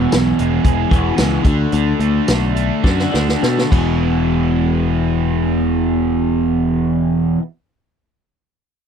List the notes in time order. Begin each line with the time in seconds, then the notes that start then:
Already playing: E2 B2 E3
0.12 B1 E3, snare, closed hi-hat, tambourine
0.39 E1 G#3, closed hi-hat
0.65 E1 G#4, kick, closed hi-hat
0.90 E1 E2 B2 E3 B3, kick, closed hi-hat
1.16 C#2 E2 B2 E3 G#3, snare, closed hi-hat, tambourine
1.42 D2 D3 A3 D4, kick, closed hi-hat
1.46 D3
1.72 D2 D3, closed hi-hat
1.99 D2 A3, closed hi-hat
2.27 B1 D3, snare, closed hi-hat, tambourine
2.55 A3, closed hi-hat
2.84 F#2 D3 A3 D4 F#4, kick, snare
2.99 snare
3.11 D2 D3 A3 D4, snare
3.29 snare
3.42 B2 A3, snare
3.58 snare
3.70 E1 E2 B2 E3 G#3 B3, kick, crash
3.74 E3 E4